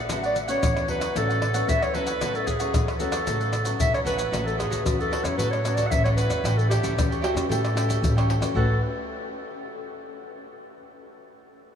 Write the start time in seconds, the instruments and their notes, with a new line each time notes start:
0.09 upright bass A1, nylon-string guitar A2 F#3 B3 C#4, cavaquinho F#4 A4 C#5 F#5, pandeiro, tamborim, maracas, surdo
0.23 cavaquinho A4 C#5 F#5, clarinet D5, pandeiro, maracas
0.35 muted cavaquinho stroke, pandeiro, maracas
0.48 nylon-string guitar F#3 B3 C#4, cavaquinho A4 C#5 F#5, clarinet C#5, pandeiro, maracas
0.63 upright bass E2, nylon-string guitar E3, pandeiro, tamborim, maracas, surdo
0.77 pandeiro, tamborim, maracas
0.88 nylon-string guitar F#3 B3 C#4, cavaquinho F#4 A4 C#5 F#5, clarinet B4, pandeiro
1.00 cavaquinho A4 C#5 F#5, pandeiro, tamborim, maracas
1.15 upright bass A1, nylon-string guitar A2 F#3 B3 C#4, cavaquinho F#4 A4 C#5 F#5, clarinet A4, pandeiro, maracas, surdo
1.29 cavaquinho A4 C#5 F#5, pandeiro, maracas
1.41 muted cavaquinho stroke, pandeiro, tamborim
1.53 nylon-string guitar F#3 B3 C#4, cavaquinho A4 C#5 F#5, pandeiro, maracas
1.68 upright bass E2, nylon-string guitar E3, clarinet E5, pandeiro, maracas, surdo
1.81 cavaquinho A4 C#5 F#5, clarinet C#5, pandeiro, tamborim, maracas
1.94 nylon-string guitar F#3 B3 C#4, cavaquinho F#4 A4 C#5 F#5, clarinet B4, pandeiro
2.07 cavaquinho A4 C#5 F#5, pandeiro, maracas
2.21 upright bass A1, nylon-string guitar A2 F#3 B3 C#4, cavaquinho F#4 A4 C#5 F#5, pandeiro, tamborim, maracas, surdo
2.34 clarinet A4, cavaquinho A4 C#5 F#5, pandeiro, maracas
2.47 clarinet G#4, muted cavaquinho stroke, pandeiro, maracas, surdo
2.59 nylon-string guitar F#3 B3 C#4, cavaquinho C#5 F#5, pandeiro, maracas
2.74 upright bass E2, nylon-string guitar E3, pandeiro, tamborim, maracas, surdo
2.88 pandeiro, tamborim, maracas
2.99 nylon-string guitar F#3 B3 C#4, cavaquinho F#4 A4 C#5 F#5, clarinet A4, pandeiro, maracas
3.11 cavaquinho A4 C#5 F#5, pandeiro, tamborim, maracas
3.26 upright bass A1, nylon-string guitar A2 F#3 B3 C#4, cavaquinho F#4 A4 C#5 F#5, pandeiro, maracas, surdo
3.40 cavaquinho A4 C#5 F#5, pandeiro, maracas
3.52 muted cavaquinho stroke, pandeiro, tamborim, maracas
3.64 nylon-string guitar F#3 B3 C#4, cavaquinho A4 C#5 F#5, pandeiro, maracas
3.80 upright bass B1, nylon-string guitar E3, clarinet E5, pandeiro, maracas, surdo
3.93 cavaquinho A4 C#5 F#5, clarinet C#5, pandeiro, tamborim, maracas
4.05 upright bass A1, nylon-string guitar F#3 B3 C#4, cavaquinho F#4 A4 C#5 F#5, clarinet B4, pandeiro, maracas
4.17 cavaquinho A4 C#5 F#5, pandeiro, maracas
4.32 upright bass A1, nylon-string guitar A2 F#3 B3 C#4, cavaquinho F#4 A4 C#5 F#5, pandeiro, tamborim, maracas, surdo
4.46 clarinet A4, pandeiro, maracas
4.57 cavaquinho F#4 A4 C#5 F#5, clarinet G#4, pandeiro, tamborim, maracas, surdo
4.70 upright bass A1, cavaquinho F#4 A4 C#5 F#5, pandeiro, maracas, surdo
4.85 upright bass E2, nylon-string guitar E3 F#3 B3 C#4, clarinet F#4, pandeiro, tamborim, maracas, surdo
4.99 clarinet A4, cavaquinho A4 C#5 F#5, pandeiro, maracas
5.11 cavaquinho F#4 A4 C#5 F#5, pandeiro, tamborim, surdo
5.23 upright bass E2, nylon-string guitar F#3 B3 C#4, cavaquinho A4 C#5 F#5, clarinet C#5, pandeiro, tamborim, maracas, surdo
5.37 nylon-string guitar A2, upright bass A2, cavaquinho F#4 A4 C#5 F#5, clarinet B4, pandeiro, maracas, surdo
5.51 clarinet C#5, pandeiro, tamborim, maracas
5.64 nylon-string guitar F#3 B3 C#4, cavaquinho F#4 A4 C#5 F#5, pandeiro, tamborim, maracas
5.75 cavaquinho F#4 A4 C#5 F#5, clarinet D5, pandeiro, maracas, surdo
5.87 clarinet E5 F#5
5.91 upright bass A1, nylon-string guitar E3 F#3 B3 C#4, pandeiro, maracas, surdo
6.04 nylon-string guitar F#3 B3 C#4, cavaquinho A4 C#5 F#5, clarinet C#5, pandeiro, tamborim, maracas
6.17 cavaquinho F#4 A4 C#5 F#5, clarinet B4, pandeiro, maracas
6.30 upright bass E2, cavaquinho A4 C#5 F#5, pandeiro, tamborim, maracas
6.43 upright bass A1, nylon-string guitar A2 G3 C#4 F#4, cavaquinho E4 A4 C#5 G5, pandeiro, tamborim, maracas, surdo
6.58 clarinet A4, pandeiro, maracas
6.70 nylon-string guitar G3 C#4 F#4, cavaquinho E4 A4 C#5 G5, clarinet G4, pandeiro, tamborim, maracas, surdo
6.82 upright bass A1, nylon-string guitar G3 C#4 F#4, cavaquinho E4 A4 C#5 G5, pandeiro, maracas, surdo
6.95 upright bass E2, nylon-string guitar E3 G3 C#4 F#4, pandeiro, tamborim, maracas, surdo
7.11 cavaquinho A4 C#5 G5, pandeiro, maracas
7.22 cavaquinho E4 A4 C#5 G5, clarinet F#4, pandeiro, tamborim
7.34 upright bass E2, nylon-string guitar G3 C#4 F#4, cavaquinho A4 C#5 G5, pandeiro, tamborim, maracas, surdo
7.49 nylon-string guitar A2, upright bass A2, cavaquinho E4 A4 C#5 G5, clarinet A4, pandeiro, maracas, surdo
7.65 pandeiro, tamborim, maracas
7.75 nylon-string guitar G3 C#4 F#4, cavaquinho E4 A4 C#5 G5, pandeiro, tamborim, maracas
7.88 cavaquinho E4 A4 C#5 G5, pandeiro, maracas, surdo
8.02 upright bass A1, nylon-string guitar E3 G3 C#4 F#4, pandeiro, maracas, surdo
8.16 nylon-string guitar G3 C#4 F#4, cavaquinho A4 C#5 G5, pandeiro, tamborim, maracas
8.29 cavaquinho E4 A4 C#5 G5, pandeiro
8.40 upright bass E2, nylon-string guitar C#4 F#4 B4, cavaquinho A4 C#5 G5, pandeiro, tamborim, maracas
8.55 upright bass A1, nylon-string guitar A3 C#4 F#4 B4, cavaquinho F#4 A4 C#5 F#5, clarinet A4, surdo